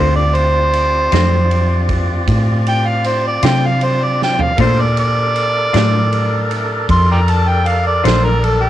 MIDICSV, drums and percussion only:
0, 0, Header, 1, 2, 480
1, 0, Start_track
1, 0, Key_signature, -1, "minor"
1, 0, Tempo, 769034
1, 2861, Time_signature, 12, 3, 24, 8
1, 5428, End_track
2, 0, Start_track
2, 0, Title_t, "Drums"
2, 217, Note_on_c, 9, 51, 52
2, 279, Note_off_c, 9, 51, 0
2, 458, Note_on_c, 9, 51, 53
2, 520, Note_off_c, 9, 51, 0
2, 699, Note_on_c, 9, 51, 68
2, 713, Note_on_c, 9, 38, 97
2, 761, Note_off_c, 9, 51, 0
2, 776, Note_off_c, 9, 38, 0
2, 943, Note_on_c, 9, 51, 57
2, 1005, Note_off_c, 9, 51, 0
2, 1179, Note_on_c, 9, 51, 51
2, 1180, Note_on_c, 9, 36, 69
2, 1241, Note_off_c, 9, 51, 0
2, 1243, Note_off_c, 9, 36, 0
2, 1421, Note_on_c, 9, 36, 77
2, 1426, Note_on_c, 9, 51, 72
2, 1484, Note_off_c, 9, 36, 0
2, 1488, Note_off_c, 9, 51, 0
2, 1663, Note_on_c, 9, 51, 60
2, 1726, Note_off_c, 9, 51, 0
2, 1900, Note_on_c, 9, 51, 60
2, 1962, Note_off_c, 9, 51, 0
2, 2138, Note_on_c, 9, 51, 83
2, 2152, Note_on_c, 9, 38, 104
2, 2201, Note_off_c, 9, 51, 0
2, 2215, Note_off_c, 9, 38, 0
2, 2378, Note_on_c, 9, 51, 57
2, 2440, Note_off_c, 9, 51, 0
2, 2635, Note_on_c, 9, 38, 56
2, 2697, Note_off_c, 9, 38, 0
2, 2741, Note_on_c, 9, 43, 82
2, 2803, Note_off_c, 9, 43, 0
2, 2857, Note_on_c, 9, 51, 85
2, 2860, Note_on_c, 9, 36, 102
2, 2920, Note_off_c, 9, 51, 0
2, 2922, Note_off_c, 9, 36, 0
2, 3102, Note_on_c, 9, 51, 61
2, 3164, Note_off_c, 9, 51, 0
2, 3343, Note_on_c, 9, 51, 52
2, 3405, Note_off_c, 9, 51, 0
2, 3581, Note_on_c, 9, 51, 72
2, 3596, Note_on_c, 9, 38, 91
2, 3644, Note_off_c, 9, 51, 0
2, 3658, Note_off_c, 9, 38, 0
2, 3823, Note_on_c, 9, 51, 54
2, 3885, Note_off_c, 9, 51, 0
2, 4062, Note_on_c, 9, 51, 56
2, 4124, Note_off_c, 9, 51, 0
2, 4300, Note_on_c, 9, 36, 81
2, 4300, Note_on_c, 9, 51, 74
2, 4363, Note_off_c, 9, 36, 0
2, 4363, Note_off_c, 9, 51, 0
2, 4543, Note_on_c, 9, 51, 55
2, 4606, Note_off_c, 9, 51, 0
2, 4781, Note_on_c, 9, 51, 53
2, 4843, Note_off_c, 9, 51, 0
2, 5025, Note_on_c, 9, 51, 71
2, 5039, Note_on_c, 9, 38, 99
2, 5087, Note_off_c, 9, 51, 0
2, 5102, Note_off_c, 9, 38, 0
2, 5265, Note_on_c, 9, 51, 52
2, 5328, Note_off_c, 9, 51, 0
2, 5428, End_track
0, 0, End_of_file